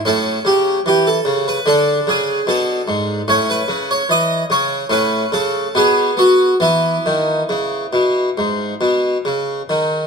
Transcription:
<<
  \new Staff \with { instrumentName = "Harpsichord" } { \time 4/4 \key d \lydian \tempo 4 = 72 << { a'8 g'8 g'16 a'8 b'16 a'8 gis'8 a'4 | \key e \major cis''16 b'8 cis''16 dis''8 cis''8 b'8 a'8 gis'8 fis'8 | e'2. r4 | } \\ { cis'2 d'2 | cis'2 cis'4 b4 | b1 | } >> }
  \new Staff \with { instrumentName = "Harpsichord" } { \clef bass \time 4/4 \key d \lydian a,8 cis8 e8 cis8 d8 cis8 b,8 gis,8 | \key e \major a,8 cis8 e8 cis8 a,8 cis8 b,8 b8 | e8 dis8 cis8 b,8 gis,8 b,8 cis8 dis8 | }
>>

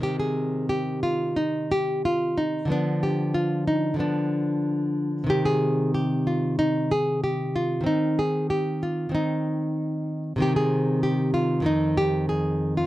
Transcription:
\new Staff \with { instrumentName = "Nylon-string guitar" } { \time 4/4 \key c \minor \tempo 4 = 93 << { g'16 aes'8. g'8 f'8 ees'8 g'8 f'8 ees'8 | d'8 g'8 f'8 ees'8 d'4.~ d'16 r16 | g'16 aes'8. g'8 f'8 ees'8 aes'8 g'8 f'8 | ees'8 aes'8 g'8 f'8 ees'4.~ ees'16 r16 |
g'16 aes'8. g'8 f'8 ees'8 g'8 aes'8. f'16 | } \\ { <c ees c'>1 | <d f b>2 <d f b>2 | <c ees c'>1 | <ees c'>2 <ees c'>2 |
<c ees c'>2 <f, ees c'>2 | } >> }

